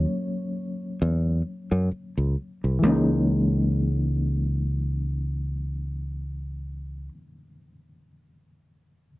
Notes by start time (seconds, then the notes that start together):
Already playing: F#3 A#3 C#4 C#5
1.02 E2
1.72 F#2
1.91 muted fingered electric bass stroke
2.17 C#2
2.64 C2
2.79 E3 G#3
2.83 C#2 A#3 C#4
2.89 D#4